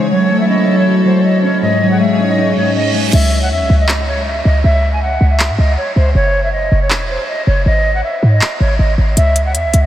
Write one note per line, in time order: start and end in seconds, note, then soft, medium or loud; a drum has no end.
0.00 0.11 C#3 medium
0.00 0.12 G#3 medium
0.00 0.11 C#4 loud
0.00 0.11 D#4 medium
0.00 1.58 C#5 medium
0.11 3.10 F#3 medium
0.11 1.04 F#3 medium
0.11 1.61 E4 medium
0.11 1.61 A4 medium
0.11 0.38 C#5 medium
0.30 1.24 A3 medium
0.40 0.47 E5 medium
0.49 1.42 C#4 medium
0.49 0.76 D#5 medium
0.67 1.62 E4 medium
0.78 1.04 C#5 medium
0.87 1.62 F#4 medium
1.05 1.62 F#3 medium
1.05 1.20 C5 medium
1.24 1.39 D#5 medium
1.43 1.62 C#4 medium
1.43 1.58 C#5 medium
1.62 2.55 G#2 medium
1.62 3.12 D#4 medium
1.62 3.12 G#4 medium
1.62 3.12 C#5 medium
1.62 1.89 D#5 loud
1.82 2.76 F#3 medium
1.91 1.98 F#5 medium
2.00 2.93 G#3 medium
2.00 2.27 E5 medium
2.19 3.13 C#4 medium
2.29 2.55 D#5 medium
2.38 3.13 D#4 medium
2.38 reverse cymbal medium
2.56 3.13 G#2 medium
2.56 2.71 C#5 medium
2.76 2.90 D#5 medium
2.94 3.13 G#3 medium
3.13 3.52 C#2 loud
3.13 3.40 E5 loud
3.13 crash medium
3.42 3.49 F#5 medium
3.51 3.62 E2 loud
3.51 3.78 E5 medium
3.61 3.69 C#2 loud
3.70 4.42 C#2 loud
3.79 4.06 D#5 medium
3.89 clap loud
4.07 4.22 C#5 medium
4.26 4.41 E5 medium
4.45 4.63 C#2 loud
4.45 4.59 D#5 medium
4.64 5.18 C#2 loud
4.64 4.91 E5 loud
4.93 5.00 G#5 medium
5.02 5.29 F#5 medium
5.21 5.51 C#2 loud
5.31 5.57 E5 medium
5.40 clap loud
5.50 5.58 G#2 loud
5.58 5.77 C#2 loud
5.58 5.73 D#5 medium
5.77 5.92 C#5 medium
5.96 6.14 C#2 loud
5.96 6.11 C5 medium
6.15 6.69 F#1 loud
6.15 6.42 C#5 loud
6.44 6.51 E5 medium
6.52 6.80 D#5 medium
6.72 6.92 F#1 loud
6.82 7.08 C#5 medium
6.90 7.18 E1 medium
6.90 clap loud
7.09 7.24 C5 medium
7.28 7.43 D#5 medium
7.47 7.65 F#1 loud
7.47 7.61 C#5 medium
7.66 8.02 G#1 loud
7.66 7.93 D#5 loud
7.95 8.02 F#5 medium
8.04 8.31 E5 medium
8.23 8.41 G#2 loud
8.32 8.59 D#5 medium
8.41 clap loud
8.60 8.78 G#1 loud
8.60 8.75 C#5 medium
8.79 8.97 G#1 loud
8.79 8.94 D#5 medium
8.98 9.16 G#1 loud
9.17 9.56 C#2 loud
9.17 9.44 E5 loud
9.17 closed hi-hat medium
9.36 closed hi-hat medium
9.46 9.52 F#5 medium
9.55 9.66 E2 loud
9.55 9.82 E5 medium
9.55 closed hi-hat medium
9.65 9.73 C#2 loud
9.74 9.86 C#2 loud
9.74 closed hi-hat medium